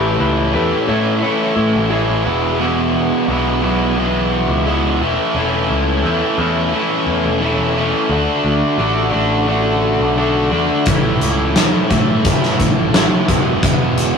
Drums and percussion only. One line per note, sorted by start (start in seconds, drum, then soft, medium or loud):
10.86 kick loud
10.86 closed hi-hat medium
11.21 closed hi-hat medium
11.56 snare loud
11.56 closed hi-hat medium
11.90 kick medium
11.90 closed hi-hat medium
12.25 kick medium
12.25 closed hi-hat medium
12.43 snare soft
12.60 kick medium
12.60 closed hi-hat medium
12.94 snare loud
12.94 closed hi-hat medium
13.28 kick medium
13.28 closed hi-hat medium
13.63 kick loud
13.63 closed hi-hat medium
13.98 closed hi-hat medium